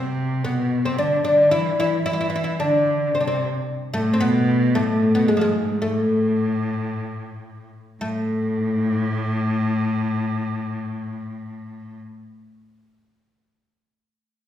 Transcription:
Already playing: cello C3, oud C4
0.43 cello B2, oud B3
0.85 cello C3, oud C4
0.98 cello D3, oud D4
1.24 cello D3, oud D4
1.51 cello E3, oud E4
1.78 cello E3, oud E4
2.06 cello E3, oud E4
2.13 oud E4
2.21 oud E4
2.30 oud E4
2.36 oud E4
2.44 oud E4
2.60 cello D3, oud D4
3.07 cello D3
3.13 cello C3, oud C4
3.20 oud D4
3.27 oud C4
3.93 cello A2, oud A3
4.14 oud C4
4.20 cello B2, oud B3
4.75 cello A2, oud A3
5.15 cello B2, oud B3
5.28 cello G#2, oud G#3
5.37 oud F3
5.41 cello G#2, oud G#3
5.82 cello G#2, oud A3
5.95 cello A2
8.01 cello A2, oud A3

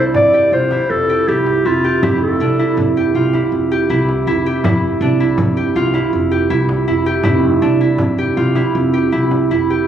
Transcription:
Already playing: upright bass C2, harp C4 D4 E4 G4 A4
0.14 upright bass F1, clarinet D5, frame drum
0.34 harp G4
0.52 upright bass C2, harp F4, clarinet C5
0.71 harp E4, frame drum
0.90 upright bass F1, clarinet A4
1.09 harp G4
1.28 upright bass C2, harp E4, clarinet G4
1.46 frame drum
1.65 upright bass F1, harp E4, clarinet F4
1.84 harp G4
2.03 upright bass F1, harp E4, clarinet G4, frame drum
2.22 clarinet A4
2.40 upright bass C2, harp D4
2.59 harp E4
2.77 upright bass F1, frame drum
2.97 harp G4
3.15 upright bass C2, harp F4
3.33 harp E4, frame drum
3.52 upright bass F1
3.71 harp G4
3.90 upright bass C2, harp E4
4.09 frame drum
4.27 upright bass F1, harp E4
4.46 harp G4
4.64 upright bass F1, harp E4, frame drum
5.01 upright bass C2, harp D4
5.20 harp E4
5.38 upright bass F1, frame drum
5.57 harp G4
5.75 upright bass C2, harp F4
5.94 harp E4, frame drum
6.13 upright bass F1
6.31 harp G4
6.50 upright bass C2, harp E4
6.69 frame drum
6.88 upright bass F1, harp E4
7.06 harp G4
7.23 upright bass F1, harp E4, frame drum
7.62 upright bass C2, harp D4, frame drum
7.81 harp E4
7.98 upright bass F1, frame drum
8.18 harp G4, frame drum
8.37 upright bass C2, harp F4
8.55 harp E4, frame drum
8.75 upright bass F1
8.93 harp G4
9.12 upright bass C2, harp E4
9.31 frame drum
9.50 upright bass F1, harp E4, frame drum
9.70 harp G4

